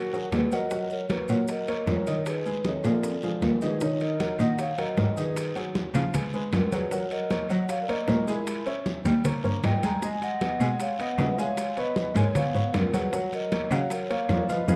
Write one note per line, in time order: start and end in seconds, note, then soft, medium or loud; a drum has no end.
0.00 0.29 F#4 medium
0.00 0.29 A#4 medium
0.13 0.45 F#3 medium
0.13 0.45 F#4 medium
0.13 0.45 G#4 medium
0.13 high conga soft
0.13 maracas soft
0.32 0.40 D#2 medium
0.32 0.51 G#4 medium
0.32 0.53 B4 medium
0.32 high bongo medium
0.32 low bongo medium
0.32 high conga medium
0.32 high timbale medium
0.32 low timbale medium
0.32 short guiro medium
0.32 maracas soft
0.52 0.68 F#3 medium
0.52 0.68 F#4 medium
0.52 0.88 A#4 medium
0.52 0.92 D#5 medium
0.52 0.68 F#5 medium
0.52 high bongo soft
0.52 short guiro medium
0.52 maracas medium
0.71 1.03 F#3 medium
0.71 1.03 F#4 medium
0.71 1.03 F#5 medium
0.71 high bongo medium
0.71 high conga soft
0.71 long guiro medium
0.71 maracas medium
0.90 1.09 A#4 medium
0.90 1.09 C#5 medium
0.90 high conga soft
0.90 maracas soft
1.09 1.26 A#3 medium
1.09 1.28 F#4 medium
1.09 1.26 A#4 medium
1.09 1.31 B4 medium
1.09 1.26 C#5 medium
1.09 high bongo medium
1.09 high conga medium
1.09 high timbale medium
1.09 low timbale medium
1.09 short guiro medium
1.09 maracas soft
1.28 1.37 A#2 loud
1.28 1.61 F#3 medium
1.28 1.61 F#4 medium
1.28 1.48 A#4 medium
1.28 1.48 C#5 medium
1.28 1.62 F#5 medium
1.28 high bongo soft
1.28 high conga soft
1.28 short guiro medium
1.28 maracas medium
1.48 1.85 A#4 medium
1.48 1.85 D#5 medium
1.48 high bongo medium
1.48 high conga soft
1.48 high timbale medium
1.48 long guiro medium
1.48 maracas medium
1.68 2.00 A#3 medium
1.68 2.00 A#4 medium
1.68 2.00 C#5 medium
1.68 high bongo soft
1.68 high conga soft
1.68 high timbale medium
1.68 maracas soft
1.87 1.95 F2 medium
1.87 2.24 A#4 medium
1.87 2.28 C#5 medium
1.87 high bongo medium
1.87 low bongo medium
1.87 high conga medium
1.87 low timbale medium
1.87 short guiro medium
1.87 maracas soft
2.07 2.39 D#3 medium
2.07 2.39 D#4 medium
2.07 2.39 D#5 medium
2.07 high bongo soft
2.07 high timbale medium
2.07 short guiro medium
2.07 maracas medium
2.26 2.62 G#4 medium
2.26 2.67 B4 medium
2.26 high bongo medium
2.26 high conga soft
2.26 high timbale medium
2.26 long guiro medium
2.26 maracas medium
2.45 2.62 G#3 medium
2.45 2.62 G#4 medium
2.45 2.62 B4 medium
2.45 high conga soft
2.45 maracas soft
2.65 2.81 D#3 medium
2.65 2.81 D#4 medium
2.65 2.71 G#4 medium
2.65 2.75 C#5 medium
2.65 2.81 D#5 medium
2.65 high bongo medium
2.65 high conga medium
2.65 high timbale medium
2.65 short guiro medium
2.65 maracas soft
2.84 2.92 A#2 loud
2.84 3.16 F3 medium
2.84 3.16 F4 medium
2.84 3.16 G#4 medium
2.84 3.16 A#4 medium
2.84 3.39 D5 medium
2.84 high bongo soft
2.84 high timbale medium
2.84 short guiro medium
2.84 maracas medium
3.03 high bongo medium
3.03 high conga soft
3.03 high timbale medium
3.03 long guiro medium
3.03 maracas medium
3.23 3.55 F3 medium
3.23 3.55 F4 medium
3.23 3.55 G#4 medium
3.23 high conga soft
3.23 low timbale medium
3.23 maracas soft
3.42 3.50 D#2 medium
3.42 3.48 F4 medium
3.42 3.52 A#4 medium
3.42 high bongo medium
3.42 low bongo medium
3.42 high conga medium
3.42 low timbale medium
3.42 short guiro medium
3.42 maracas soft
3.61 3.78 D#3 medium
3.61 3.78 D#4 medium
3.61 3.79 G#4 medium
3.61 3.80 B4 medium
3.61 3.78 D#5 medium
3.61 high bongo soft
3.61 low timbale medium
3.61 short guiro medium
3.61 maracas medium
3.81 4.13 D#3 medium
3.81 4.13 D#4 medium
3.81 3.87 A#4 medium
3.81 3.90 C#5 loud
3.81 4.13 D#5 medium
3.81 high bongo medium
3.81 high conga soft
3.81 long guiro medium
3.81 maracas medium
4.00 4.36 A#4 medium
4.00 4.37 D#5 medium
4.00 high bongo soft
4.00 high conga soft
4.00 high timbale medium
4.00 maracas soft
4.20 4.36 F#3 medium
4.20 4.36 F#4 medium
4.20 4.36 A#4 medium
4.20 high bongo medium
4.20 high conga medium
4.20 high timbale medium
4.20 low timbale medium
4.20 short guiro medium
4.20 maracas soft
4.39 4.47 A#2 loud
4.39 4.71 D#3 medium
4.39 4.71 D#4 medium
4.39 4.71 D#5 medium
4.39 4.58 D#5 medium
4.39 4.58 F#5 loud
4.39 high bongo soft
4.39 high conga soft
4.39 short guiro medium
4.39 maracas medium
4.59 4.77 C#5 medium
4.59 4.80 F5 loud
4.59 high bongo medium
4.59 high conga soft
4.59 high timbale medium
4.59 long guiro medium
4.59 maracas medium
4.78 4.94 F#3 medium
4.78 4.94 F#4 medium
4.78 4.94 A#4 medium
4.78 5.15 A#4 medium
4.78 5.19 D#5 loud
4.78 high bongo soft
4.78 high conga soft
4.78 high timbale medium
4.78 maracas soft
4.97 5.06 G#2 medium
4.97 5.13 F#3 medium
4.97 5.13 F#4 medium
4.97 5.14 A#4 medium
4.97 high bongo medium
4.97 low bongo medium
4.97 high conga medium
4.97 low timbale medium
4.97 short guiro medium
4.97 maracas soft
5.17 5.49 D#3 medium
5.17 5.49 D#4 medium
5.17 5.54 G#4 medium
5.17 5.54 B4 medium
5.17 5.49 D#5 medium
5.17 high conga soft
5.17 short guiro medium
5.17 maracas medium
5.36 high bongo medium
5.36 high conga soft
5.36 high timbale medium
5.36 long guiro medium
5.36 maracas medium
5.55 5.87 F#3 medium
5.55 5.88 F#4 medium
5.55 5.88 G#4 medium
5.55 high bongo soft
5.55 high conga soft
5.55 high timbale medium
5.55 maracas soft
5.75 high bongo medium
5.75 high conga medium
5.75 low timbale medium
5.75 short guiro medium
5.75 maracas soft
5.94 6.02 C#3 loud
5.94 6.10 F3 medium
5.94 6.11 F4 medium
5.94 6.11 F5 medium
5.94 high bongo soft
5.94 high conga loud
5.94 high timbale medium
5.94 short guiro medium
5.94 maracas medium
6.14 6.30 G#3 medium
6.14 6.30 G#4 medium
6.14 6.30 B4 medium
6.14 high bongo medium
6.14 high conga soft
6.14 low conga medium
6.14 high timbale medium
6.14 long guiro medium
6.14 maracas medium
6.33 6.66 G#3 medium
6.33 6.66 G#4 medium
6.33 6.66 B4 medium
6.33 high bongo soft
6.33 high conga soft
6.33 maracas soft
6.52 6.60 F#2 medium
6.52 6.59 F4 medium
6.52 6.62 A#4 medium
6.52 high bongo medium
6.52 low bongo medium
6.52 high conga medium
6.52 high timbale loud
6.52 low timbale medium
6.52 short guiro medium
6.52 maracas soft
6.72 6.88 F#3 medium
6.72 6.88 F#4 medium
6.72 6.91 G#4 medium
6.72 6.93 B4 medium
6.72 6.89 F#5 medium
6.72 high conga medium
6.72 high timbale medium
6.72 short guiro medium
6.72 maracas medium
6.91 7.24 F#3 medium
6.91 7.24 F#4 medium
6.91 7.10 A#4 medium
6.91 7.12 C#5 medium
6.91 7.24 F#5 medium
6.91 high bongo medium
6.91 high conga soft
6.91 long guiro medium
6.91 maracas medium
7.11 7.47 A#4 medium
7.11 7.51 D#5 loud
7.11 high bongo soft
7.11 high conga soft
7.11 high timbale medium
7.11 maracas soft
7.30 7.46 A#3 medium
7.30 7.47 A#4 medium
7.30 7.47 C#5 medium
7.30 high bongo medium
7.30 high conga medium
7.30 high timbale medium
7.30 low timbale medium
7.30 short guiro medium
7.30 maracas soft
7.49 7.57 F#3 medium
7.49 7.82 F#3 medium
7.49 7.82 F#4 medium
7.49 7.68 D#5 medium
7.49 7.82 F#5 medium
7.49 7.68 F#5 loud
7.49 high bongo soft
7.49 high conga soft
7.49 short guiro medium
7.49 maracas medium
7.69 7.81 C#5 medium
7.69 7.82 F5 loud
7.69 high bongo medium
7.69 high conga soft
7.69 high timbale medium
7.69 long guiro medium
7.69 maracas medium
7.82 7.88 A#4 medium
7.82 7.89 D5 medium
7.88 8.05 A#3 medium
7.88 8.25 A#4 medium
7.88 8.05 A#4 medium
7.88 8.05 C#5 medium
7.88 8.29 D#5 loud
7.88 high bongo soft
7.88 high conga soft
7.88 high timbale medium
7.88 maracas soft
8.08 8.16 A#2 loud
8.08 8.24 A#3 medium
8.08 8.24 A#4 medium
8.08 8.24 C#5 medium
8.08 high bongo medium
8.08 low bongo medium
8.08 high conga medium
8.08 low timbale medium
8.08 short guiro medium
8.08 maracas soft
8.27 8.59 G#3 medium
8.27 8.64 E4 medium
8.27 8.60 G#4 medium
8.27 8.65 A#4 medium
8.27 8.60 G#5 medium
8.27 high conga soft
8.27 short guiro medium
8.27 maracas medium
8.47 high bongo medium
8.47 high conga soft
8.47 high timbale medium
8.47 long guiro medium
8.47 maracas medium
8.66 8.98 C#4 medium
8.66 8.98 C#5 medium
8.66 8.99 E5 medium
8.66 high bongo soft
8.66 high conga soft
8.66 high timbale medium
8.66 maracas soft
8.86 high bongo medium
8.86 high conga medium
8.86 low timbale medium
8.86 short guiro medium
8.86 maracas soft
9.05 9.13 D#2 loud
9.05 9.21 G3 medium
9.05 9.21 G4 medium
9.05 9.22 G5 medium
9.05 high bongo soft
9.05 high conga medium
9.05 high timbale medium
9.05 short guiro medium
9.05 maracas medium
9.24 9.41 A#3 medium
9.24 9.41 A#4 medium
9.24 9.41 C#5 medium
9.24 high bongo medium
9.24 high conga soft
9.24 low conga medium
9.24 high timbale medium
9.24 long guiro medium
9.24 maracas medium
9.44 9.52 G2 medium
9.44 9.76 A#3 medium
9.44 9.76 A#4 medium
9.44 9.76 C#5 medium
9.44 high bongo soft
9.44 high conga soft
9.44 maracas soft
9.63 9.71 G#2 medium
9.63 9.82 D#5 medium
9.63 9.84 G5 loud
9.63 high bongo medium
9.63 low bongo medium
9.63 high conga medium
9.63 high timbale loud
9.63 low timbale medium
9.63 short guiro medium
9.63 maracas soft
9.83 9.99 G#3 medium
9.83 9.99 G#4 medium
9.83 10.02 G5 medium
9.83 9.99 G#5 medium
9.83 10.04 A#5 loud
9.83 high conga medium
9.83 high timbale medium
9.83 short guiro medium
9.83 maracas medium
10.02 10.34 G#3 medium
10.02 10.34 G#4 medium
10.02 10.21 D#5 medium
10.02 10.34 G#5 medium
10.02 10.24 G#5 loud
10.02 high bongo medium
10.02 high conga soft
10.02 long guiro medium
10.02 maracas medium
10.22 10.77 D#5 medium
10.22 10.82 F#5 loud
10.22 high bongo soft
10.22 high conga soft
10.22 high timbale medium
10.22 maracas soft
10.41 10.57 B3 medium
10.41 10.57 B4 medium
10.41 10.58 D#5 medium
10.41 high bongo medium
10.41 high conga medium
10.41 high timbale medium
10.41 low timbale medium
10.41 short guiro medium
10.41 maracas soft
10.60 10.68 B2 medium
10.60 10.93 G#3 medium
10.60 10.93 G#4 medium
10.60 10.93 G#5 medium
10.60 high bongo soft
10.60 high conga soft
10.60 short guiro medium
10.60 maracas medium
10.80 10.99 C#5 medium
10.80 10.99 F5 medium
10.80 high bongo medium
10.80 high conga soft
10.80 high timbale medium
10.80 long guiro medium
10.80 maracas medium
10.99 11.16 B3 medium
10.99 11.16 B4 medium
10.99 11.16 D#5 medium
10.99 11.30 D#5 medium
10.99 11.33 F#5 loud
10.99 high bongo soft
10.99 high conga soft
10.99 high timbale loud
10.99 maracas soft
11.18 11.26 C#3 loud
11.18 11.35 B3 medium
11.18 11.35 B4 medium
11.18 11.35 D#5 medium
11.18 high bongo medium
11.18 low bongo medium
11.18 high conga medium
11.18 low timbale medium
11.18 short guiro medium
11.18 maracas soft
11.31 11.38 B4 medium
11.31 11.39 E5 medium
11.38 11.70 G#3 medium
11.38 11.70 G#4 medium
11.38 11.75 C#5 medium
11.38 11.76 F5 loud
11.38 11.70 G#5 medium
11.38 short guiro medium
11.38 maracas medium
11.57 high bongo medium
11.57 high conga soft
11.57 high timbale medium
11.57 long guiro medium
11.57 maracas medium
11.77 12.09 B3 medium
11.77 12.09 B4 medium
11.77 12.14 B4 medium
11.77 12.09 C#5 medium
11.77 12.18 D#5 medium
11.77 high bongo soft
11.77 high conga soft
11.77 high timbale medium
11.77 maracas soft
11.96 high bongo medium
11.96 high conga medium
11.96 low timbale medium
11.96 short guiro medium
11.96 maracas soft
12.15 12.23 G#2 loud
12.15 12.32 G#3 medium
12.15 12.32 G#4 medium
12.15 12.34 A#4 medium
12.15 12.37 C#5 medium
12.15 12.32 G#5 medium
12.15 high bongo soft
12.15 high conga loud
12.15 high timbale medium
12.15 short guiro medium
12.15 maracas medium
12.35 12.51 B3 medium
12.35 12.52 B4 medium
12.35 12.72 C#5 medium
12.35 12.52 C#5 medium
12.35 12.72 F5 medium
12.35 high bongo medium
12.35 high conga soft
12.35 low conga medium
12.35 high timbale medium
12.35 long guiro medium
12.35 maracas medium
12.54 12.62 G#2 medium
12.54 12.87 B3 medium
12.54 12.87 B4 medium
12.54 12.87 C#5 medium
12.54 high bongo soft
12.54 high conga soft
12.54 maracas soft
12.73 12.81 F#2 loud
12.73 12.92 F4 medium
12.73 12.93 A#4 medium
12.73 high bongo medium
12.73 low bongo medium
12.73 high conga medium
12.73 high timbale loud
12.73 low timbale medium
12.73 short guiro medium
12.73 maracas soft
12.94 13.10 F#3 medium
12.94 13.10 F#4 medium
12.94 13.12 G#4 medium
12.94 13.13 B4 medium
12.94 13.10 F#5 medium
12.94 high conga medium
12.94 high timbale medium
12.94 short guiro medium
12.94 maracas medium
13.12 13.45 F#3 medium
13.12 13.45 F#4 medium
13.12 13.19 A#4 medium
13.12 13.23 C#5 medium
13.12 13.45 F#5 medium
13.12 high bongo medium
13.12 high conga soft
13.12 long guiro medium
13.12 maracas medium
13.32 13.69 A#4 medium
13.32 13.74 D#5 medium
13.32 high bongo soft
13.32 high conga soft
13.32 high timbale medium
13.32 maracas soft
13.52 13.68 A#3 medium
13.52 13.68 A#4 medium
13.52 13.68 C#5 medium
13.52 high bongo medium
13.52 high conga medium
13.52 high timbale medium
13.52 low timbale medium
13.52 short guiro medium
13.52 maracas soft
13.71 13.79 C#3 loud
13.71 14.03 F#3 loud
13.71 14.03 F#4 medium
13.71 13.90 C#5 medium
13.71 13.92 F5 medium
13.71 14.04 F#5 medium
13.71 high bongo soft
13.71 short guiro medium
13.71 maracas medium
13.90 14.09 A#4 medium
13.90 14.12 C#5 medium
13.90 high bongo medium
13.90 high conga soft
13.90 high timbale medium
13.90 long guiro medium
13.90 maracas medium
14.10 14.26 A#3 medium
14.10 14.26 A#4 medium
14.10 14.26 C#5 medium
14.10 14.47 C#5 medium
14.10 14.51 F5 medium
14.10 high bongo soft
14.10 high conga soft
14.10 high timbale medium
14.10 maracas soft
14.29 14.37 F2 loud
14.29 14.46 A#3 medium
14.29 14.46 A#4 medium
14.29 14.46 C#5 medium
14.29 high bongo medium
14.29 low bongo medium
14.29 high conga medium
14.29 low timbale medium
14.29 short guiro medium
14.29 maracas soft
14.49 14.65 F3 medium
14.49 14.65 F4 medium
14.49 14.68 B4 medium
14.49 14.68 D#5 medium
14.49 14.65 F5 medium
14.49 high conga soft
14.49 short guiro medium
14.49 maracas medium
14.68 14.75 F2 loud
14.68 14.76 F4 loud
14.68 14.76 G#4 loud
14.68 14.76 B4 loud
14.68 14.76 B4 medium
14.68 14.76 B4 loud
14.68 14.76 D#5 loud
14.68 14.76 F5 loud
14.68 low bongo loud
14.68 high conga medium
14.68 high timbale medium
14.68 long guiro medium
14.68 maracas loud